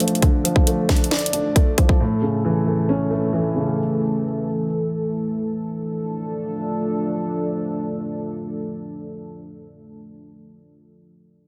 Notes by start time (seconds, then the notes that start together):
Already playing: D3 F3 A3 D4 A4 D5
0.00 F3, closed hi-hat
0.08 closed hi-hat
0.15 closed hi-hat
0.22 D3, kick, closed hi-hat
0.44 F3, closed hi-hat
0.56 kick
0.67 A3, closed hi-hat
0.89 D4, kick, snare, closed hi-hat
0.96 closed hi-hat
1.04 closed hi-hat
1.11 D5, snare, closed hi-hat
1.19 closed hi-hat
1.26 closed hi-hat
1.33 D4, closed hi-hat
1.56 A3, kick, closed hi-hat
1.78 F3, kick, closed hi-hat
1.89 kick
2.00 A2 E3
2.22 C#3
2.45 E3
2.67 A3
2.89 C#4
3.11 A3
3.33 E3
3.56 C#3
5.56 F3 A3 D4 A4